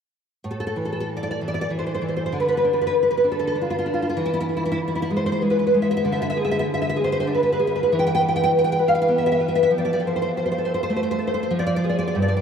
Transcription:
0.44 A2
0.51 A4
0.60 A4
0.67 A4
0.76 E3
0.85 A4
0.92 A4
1.00 A4
1.17 D5
1.23 D5
1.31 D5
1.41 E3
1.48 D5
1.54 D5
1.61 D5
1.70 E3
1.79 C5
1.87 C5
1.94 C5
2.02 E3
2.08 C5
2.16 C5
2.26 C5
2.32 D3
2.40 B4
2.48 B4
2.57 B4
2.64 D4
2.73 B4
2.81 B4
2.87 B4
3.03 B4
3.11 B4
3.17 B4
3.24 D4
3.32 A4
3.39 A4
3.47 A4
3.55 D4
3.62 F4
3.70 F4
3.79 F4
3.86 D4
3.94 F4
4.02 F4
4.09 F4
4.17 E3
4.26 E4
4.34 E4
4.40 E4
4.49 E4
4.57 E4
4.66 E4
4.72 E4
4.88 E4
4.95 E4
5.02 E4
5.10 G#3
5.17 C5
5.26 C5
5.32 C5
5.42 G#3
5.50 B4
5.59 B4
5.67 B4
5.74 G#3
5.82 E5
5.91 E5
5.97 E5
6.05 D3
6.12 E5
6.22 E5
6.30 E5
6.37 G#4
6.45 E5
6.51 E5
6.59 E5
6.74 E5
6.82 E5
6.89 E5
6.96 G#4
7.04 C5
7.12 C5
7.20 C5
7.27 D4
7.35 B4
7.43 B4
7.52 B4
7.59 G#4
7.67 B4
7.76 B4
7.83 B4
7.92 E3
7.99 G5
8.07 G5
8.15 G5
8.21 B4
8.29 G5
8.36 G5
8.44 G5
8.58 G5
8.64 G5
8.72 G5
8.79 B4
8.88 F5
8.95 F5
9.02 F5
9.08 B3
9.18 E5
9.26 E5
9.32 E5
9.40 B4
9.48 E5
9.55 E5
9.63 E5
9.71 F3
9.78 D5
9.85 D5
9.93 D5
10.00 A4
10.07 C5
10.16 C5
10.22 C5
10.37 C5
10.46 C5
10.52 C5
10.58 A4
10.65 C5
10.74 C5
10.83 C5
10.90 A3
10.96 C5
11.03 C5
11.11 C5
11.19 A4
11.27 C5
11.34 C5
11.43 C5
11.51 F3
11.59 D5
11.67 D5
11.76 D5
11.84 G#4
11.89 D5
11.99 D5
12.07 D5
12.15 G2
12.22 D5
12.28 D5
12.37 D5

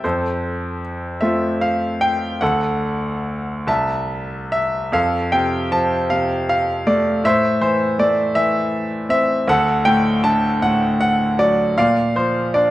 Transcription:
0.04 F2 A4 C5
1.21 A3 C4 F4 E5
1.61 F5
2.01 G5
2.41 D2 A4 F#5
3.67 C2 E5 A5
4.52 E5
4.92 F2 A4 F5
5.32 C3 G5
5.72 F3 A5
6.10 C3 F5
6.49 F5
6.87 A3 D5
7.24 A2 C5 E5
7.61 E3 C5
7.99 A3 D5
8.35 E3 E5
9.09 C4 E5
9.48 D2 A4 F#5
9.85 A2 G5
10.24 D3 A5
10.62 A2 F#5
11.01 F#5
11.39 F#3 D5
11.77 A#2 D5 F5
12.16 F3 C5
12.54 D4 D5

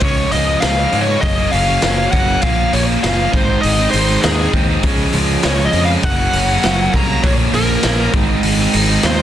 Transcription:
0.00 C#2 C#3 F3 G#3 C#4 C#5, kick, open hi-hat
0.32 C#2 C#3 F3 G#3 C#4 D#5, open hi-hat
0.60 C#2 C#3 F3 G#3 C#4 F5, snare, open hi-hat
0.77 F3 G#3 C#4
0.91 G#2 C#3 F3 G#3 C#4, open hi-hat
1.01 C#5
1.06 F3 G#3 C#4
1.21 F#1 F#2 C#3 F#3 A#3 C#4 D#5, kick, open hi-hat
1.38 F#3 A#3 C#4
1.51 F#1 C#3 F#3 A#3 C#4 F5, open hi-hat
1.67 F#3 A#3 C#4
1.82 F#1 F#2 C#3 F#3 A#3 C#4, snare, open hi-hat
2.12 F#1 C#3 F#3 A#3 C#4 F#5, kick, open hi-hat
2.28 F#3 A#3 C#4
2.42 A#1 A#2 F3 A#3 C#4 F5, kick, open hi-hat
2.73 A#1 A#2 F3 A#3 C#4 C#5, open hi-hat
3.02 F#1 A#2 F3 A#3 C#4 F5, snare, open hi-hat
3.18 F3 A#3 C#4
3.32 G#1 G#2 D#3 G#3 C4 D#4 C5, kick, open hi-hat
3.48 G#3 C4 D#4
3.61 G#1 G#3 D#5, open hi-hat
3.79 G#3 C4 D#4
3.91 G#1 D#3 C5, open hi-hat
3.95 G#3 C4 D#4
4.09 G#3 C4 D#4
4.21 D#2 G#2 D#3 G#3 C4 D#4 G#4, snare, open hi-hat
4.53 D#2 D#3 G#3 C4 D#4, kick, open hi-hat
4.68 G#3 C4 D#4
4.83 C#2 C#3 F3 G#3 C#4, kick, open hi-hat
5.13 C#2 C#3 F3 G#3 C#4, open hi-hat
5.43 C#2 C#3 F3 G#3 C#4 C#5, snare, open hi-hat
5.58 F3 G#3 C#4
5.66 D#5
5.73 F2 C#3 F3 G#3 C#4, open hi-hat
5.85 C#4 F5
5.90 F3 G#3
6.03 F#1 F#2 C#3 F#3 A#3 C#4 F#5, kick, open hi-hat
6.19 F#3 A#3 C#4
6.33 F#1 C#3 F#3 A#3 C#4, open hi-hat
6.49 F#3 A#3 C#4
6.63 F#1 F#2 C#3 F#3 A#3 C#4, snare, open hi-hat
6.92 C2 C#3 F#3 A#3 C#4 A#5, kick, open hi-hat
7.07 F#3 A#3 C#4
7.21 A#1 A#2 F3 A#3 C#4 C#5, kick, open hi-hat
7.52 A#1 A#2 F3 A#3 C#4 A#4, open hi-hat
7.82 A#1 A#2 F3 A#3 C#4, snare, open hi-hat
7.98 F3 A#3 C#4
8.11 G#1 G#2 D#3 G#3 C4 D#4, kick, open hi-hat
8.28 G#3 C4 D#4
8.43 G#1 G#3, open hi-hat
8.59 G#3 C4 D#4
8.73 G#1 D#3 G#3 C4 D#4, open hi-hat
8.87 G#3 C4 D#4
9.03 D#2 G#2 D#3 G#3 C4 D#4 C5, snare, open hi-hat

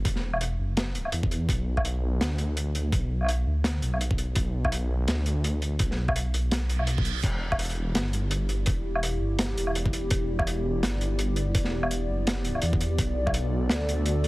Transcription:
0.05 E1, kick, closed hi-hat
0.16 snare
0.33 low woodblock
0.41 closed hi-hat
0.59 F#1
0.77 snare, closed hi-hat
0.95 closed hi-hat
1.05 low woodblock
1.12 E2, closed hi-hat
1.23 kick
1.31 closed hi-hat
1.49 B1, kick, closed hi-hat
1.77 kick, low woodblock
1.85 closed hi-hat
2.21 D2, snare, closed hi-hat
2.38 closed hi-hat
2.57 closed hi-hat
2.75 closed hi-hat
2.92 B1, kick, closed hi-hat
3.21 low woodblock
3.23 low woodblock
3.25 low woodblock
3.26 closed hi-hat, low woodblock
3.47 D2
3.64 snare, closed hi-hat
3.82 B1, closed hi-hat
3.94 low woodblock
4.01 closed hi-hat
4.11 kick
4.18 closed hi-hat
4.36 B1, kick, closed hi-hat
4.65 kick, low woodblock
4.72 closed hi-hat
5.08 D2, snare, closed hi-hat
5.26 closed hi-hat
5.44 closed hi-hat
5.62 closed hi-hat
5.79 B1, kick, closed hi-hat
5.91 snare
6.08 kick, low woodblock
6.16 closed hi-hat
6.34 B1, closed hi-hat
6.51 snare, closed hi-hat, reverse cymbal
6.70 closed hi-hat
6.79 low woodblock
6.87 closed hi-hat
6.98 kick
7.05 closed hi-hat
7.23 E1 B3 E4 G4 D5, kick, closed hi-hat, crash
7.52 kick, low woodblock
7.59 closed hi-hat
7.62 closed hi-hat
7.65 closed hi-hat
7.69 closed hi-hat
7.74 closed hi-hat
7.95 G1, snare, closed hi-hat
8.13 closed hi-hat
8.31 closed hi-hat
8.49 closed hi-hat
8.66 E1, kick, closed hi-hat
8.95 low woodblock
9.03 closed hi-hat
9.21 G1
9.39 snare, closed hi-hat
9.57 E1, closed hi-hat
9.67 low woodblock
9.75 closed hi-hat
9.86 kick
9.93 closed hi-hat
10.11 E1, kick, closed hi-hat
10.39 kick, low woodblock
10.47 closed hi-hat
10.83 G1, snare, closed hi-hat
11.01 closed hi-hat
11.19 closed hi-hat
11.36 closed hi-hat
11.55 E1, kick, closed hi-hat
11.64 snare
11.83 low woodblock
11.91 closed hi-hat
12.09 F#1
12.27 snare, closed hi-hat
12.45 closed hi-hat
12.55 low woodblock
12.62 E2, closed hi-hat
12.73 kick
12.81 closed hi-hat
12.98 B1 F#4 A4, kick, closed hi-hat
13.27 kick, low woodblock
13.34 closed hi-hat
13.70 D2, snare, closed hi-hat
13.89 closed hi-hat
14.06 closed hi-hat
14.24 closed hi-hat

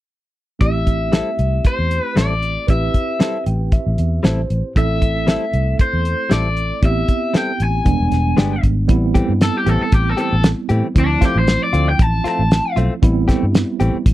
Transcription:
0.59 A1 A3 C4 E4 G4 E5, kick, closed hi-hat
0.87 kick, closed hi-hat
1.12 G3 C4 E4 A4, snare, closed hi-hat
1.39 C2, closed hi-hat
1.65 C5, kick, closed hi-hat
1.79 E2
1.91 closed hi-hat
2.02 B4
2.16 A1 G3 C4 E4 A4 D5, snare, closed hi-hat
2.43 closed hi-hat
2.67 A1 C4 E4 G4 B4 E5, kick, closed hi-hat
2.94 kick, closed hi-hat
3.20 G3 C4 E4 A4, snare, closed hi-hat
3.46 A1 G5, closed hi-hat
3.72 E5, kick, closed hi-hat
3.87 A1
3.98 E2, closed hi-hat
4.23 A1 G3 C4 E4 A4 C5, snare, closed hi-hat
4.50 A1, closed hi-hat
4.75 A1 A3 C4 E4 A4 E5, kick, closed hi-hat
5.02 kick, closed hi-hat
5.27 G3 C4 E4 A4, snare, closed hi-hat
5.53 C2, closed hi-hat
5.79 C5, kick, closed hi-hat
5.93 E2
6.05 closed hi-hat
6.30 A1 G3 C4 E4 A4 D5, snare, closed hi-hat
6.57 closed hi-hat
6.82 A1 B3 C4 E4 G4 E5, kick, closed hi-hat
7.08 kick, closed hi-hat
7.34 G3 C4 E4 A4 G5, snare, closed hi-hat
7.60 A1 G#5, closed hi-hat
7.84 E1 G3 G#3 B3 D4, kick, closed hi-hat
8.00 E1
8.12 E1, snare, closed hi-hat
8.37 G1 G#3 B3 D4 G4, snare, closed hi-hat
8.63 G#1, kick, closed hi-hat
8.88 A1 G3 B3 C4 E4, kick, closed hi-hat
9.15 E3 A3 C4 G4, kick, closed hi-hat
9.29 G2
9.41 A4, snare, closed hi-hat
9.58 G4
9.66 A1 E3 A3 C4 G4 A4, closed hi-hat
9.83 A4
9.92 A1 G4, kick, closed hi-hat
10.09 A4
10.17 E3 A3 C4 G4 A4, closed hi-hat
10.33 A1
10.44 snare, closed hi-hat
10.69 A2 E3 A3 C4 G4, closed hi-hat
10.95 D2 F3 A3 C4 E4, kick, closed hi-hat
10.99 D4
11.21 A3 C4 F4, kick, snare, closed hi-hat
11.25 G4
11.36 A1 C5
11.47 snare, closed hi-hat
11.64 D5
11.73 D2 A3 C4 F4, closed hi-hat
11.89 G5
11.99 A1 A5, kick, closed hi-hat
12.24 A3 C4 F4 A5, muted fingered electric bass stroke, snare, closed hi-hat
12.39 A1
12.51 snare, closed hi-hat
12.76 B1 A3 C4 F4, closed hi-hat
13.02 A1 G3 B3 C4 E4, kick, closed hi-hat
13.28 E3 A3 C4 G4, kick, snare, closed hi-hat
13.43 G2
13.55 snare, closed hi-hat
13.80 A1 E3 A3 C4 G4, closed hi-hat
13.95 muted fingered electric bass stroke
14.06 A1, kick, closed hi-hat

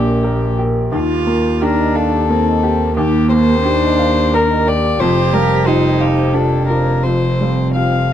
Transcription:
Already playing: A#1 A#3 G4 D5
0.06 A#4
0.23 G4 A#4
0.41 G5
0.58 G4 A#4
0.92 D#2 D#4 F4
1.11 G4
1.27 A#3 A#4
1.45 G4
1.62 D4 D#4 G4 A#4
1.80 D#5
1.95 G4 A4 F5
2.15 G4
2.30 A#3 C4 D#4
2.48 D#5
2.63 G4
2.97 D#2 A#3 D#4 G4
3.15 G4
3.31 A#3 A#4 C5
3.48 G4
3.65 D4 D#4 G4
3.83 D#5
3.99 G4 F5
4.17 G4
4.34 D#4 A#4
4.50 D#5
4.66 G4 D5
4.99 F1 F2 F4 G4 C5
5.17 C5
5.33 G3 A#4 F5
5.49 C5
5.66 D#4 F4 G4 C5
5.83 G5
5.99 G4 C5 F5
6.17 C5
6.33 D4 F4 G4 A4
6.51 G5
6.68 F4 A#4 C5
7.03 F2 C4 F4 C5
7.40 G3 F5
7.58 C5
7.74 F4 G4 F5

